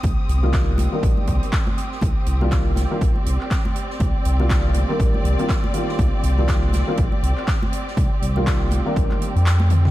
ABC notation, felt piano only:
X:1
M:4/4
L:1/16
Q:"Swing 16ths" 1/4=121
K:Cm
V:1 name="Felt piano"
z3 [E,G,B,DF]4 [E,G,B,DB]4 z4 z | z3 [E,G,B,DF]4 [E,G,B,DF] z8 | z3 [E,G,B,DF]4 [E,G,B,DB]4 [E,G,B,DF] z2 [E,G,B,DF]2- | [E,G,B,DF]3 [E,G,B,DF]4 [E,G,B,DF] z8 |
z3 [E,G,B,DF]4 [E,G,B,DB]4 z4 z |]